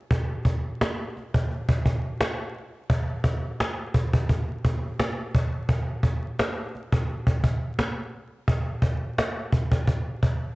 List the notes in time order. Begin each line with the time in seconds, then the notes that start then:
0.11 cajon bass
0.45 cajon bass
0.81 cajon slap
1.17 cajon slap
1.34 cajon bass
1.51 cajon slap
1.69 cajon bass
1.86 cajon bass
2.21 cajon slap
2.90 cajon bass
3.24 cajon bass
3.60 cajon slap
3.94 cajon bass
4.13 cajon bass
4.29 cajon bass, cajon slap
4.49 cajon slap
4.65 cajon bass
5.00 cajon slap
5.35 cajon bass
5.69 cajon bass
6.03 cajon bass
6.39 cajon slap
6.75 cajon slap
6.92 cajon bass
7.09 cajon slap
7.27 cajon bass
7.44 cajon bass
7.79 cajon slap
8.48 cajon bass
8.82 cajon bass
9.18 cajon slap
9.52 cajon bass
9.72 cajon bass
9.87 cajon bass, cajon slap
10.23 cajon bass